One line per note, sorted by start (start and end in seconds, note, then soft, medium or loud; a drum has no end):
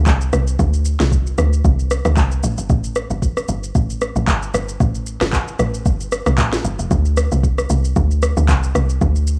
0.06 0.30 C2 loud
0.06 kick medium
0.06 clap loud
0.06 shaker medium
0.21 shaker medium
0.33 0.56 C2 loud
0.33 cross-stick medium
0.33 shaker loud
0.47 shaker medium
0.59 0.96 D2 loud
0.59 kick loud
0.59 shaker medium
0.73 shaker medium
0.85 shaker loud
1.00 1.34 C2 loud
1.00 snare medium
1.00 shaker medium
1.12 kick medium
1.12 shaker medium
1.27 shaker medium
1.38 1.62 D2 medium
1.38 cross-stick medium
1.38 shaker medium
1.53 shaker medium
1.65 2.01 C2 loud
1.65 kick loud
1.65 shaker medium
1.79 shaker soft
1.91 cross-stick loud
1.91 shaker medium
2.05 2.16 D2 loud
2.05 cross-stick medium
2.05 shaker medium
2.17 2.41 C2 loud
2.17 kick medium
2.17 clap medium
2.17 shaker medium
2.32 shaker medium
2.43 2.56 A1 loud
2.43 shaker loud
2.58 2.69 G1 medium
2.58 shaker medium
2.70 3.06 A1 loud
2.70 kick loud
2.70 shaker medium
2.84 shaker medium
2.96 cross-stick medium
2.96 shaker loud
3.10 3.45 G1 medium
3.10 shaker medium
3.22 kick medium
3.22 shaker medium
3.37 cross-stick medium
3.37 shaker medium
3.48 3.72 G1 medium
3.48 shaker medium
3.64 shaker medium
3.75 4.12 A1 loud
3.75 kick loud
3.75 shaker medium
3.90 shaker medium
4.01 cross-stick medium
4.01 shaker medium
4.16 4.26 A1 loud
4.16 shaker medium
4.28 4.51 G1 loud
4.28 kick medium
4.28 clap medium
4.28 shaker medium
4.42 shaker medium
4.54 4.78 G1 medium
4.54 cross-stick loud
4.54 shaker loud
4.69 shaker medium
4.80 5.17 A1 loud
4.80 kick loud
4.80 shaker medium
4.95 shaker medium
5.06 shaker loud
5.21 5.55 G1 medium
5.21 cross-stick medium
5.21 snare medium
5.21 shaker medium
5.33 kick medium
5.33 clap medium
5.33 shaker medium
5.48 shaker medium
5.59 5.83 A1 loud
5.59 cross-stick medium
5.59 shaker medium
5.74 shaker medium
5.86 6.22 G1 loud
5.86 kick loud
5.86 shaker medium
6.00 shaker medium
6.12 cross-stick loud
6.12 shaker medium
6.26 6.37 C2 loud
6.26 cross-stick loud
6.26 shaker medium
6.38 6.62 A1 loud
6.38 kick medium
6.38 clap medium
6.38 shaker medium
6.53 snare medium
6.53 shaker medium
6.65 6.77 G1 medium
6.65 shaker loud
6.79 6.90 F1 medium
6.79 shaker medium
6.91 7.27 D2 loud
6.91 kick loud
6.91 shaker medium
7.05 shaker medium
7.17 cross-stick loud
7.17 shaker loud
7.32 7.66 C2 medium
7.32 shaker medium
7.43 kick medium
7.43 shaker medium
7.58 cross-stick medium
7.58 shaker medium
7.70 7.93 C2 loud
7.70 shaker medium
7.85 shaker medium
7.96 8.33 D2 loud
7.96 kick loud
7.96 shaker medium
8.11 shaker medium
8.22 cross-stick loud
8.22 shaker medium
8.37 8.48 D2 loud
8.37 shaker medium
8.49 8.72 C2 loud
8.49 kick medium
8.49 clap medium
8.49 shaker medium
8.63 shaker medium
8.75 8.99 C2 loud
8.75 cross-stick medium
8.75 shaker loud
8.89 shaker medium
9.01 9.38 D2 loud
9.01 kick loud
9.01 shaker medium
9.16 shaker medium
9.27 shaker loud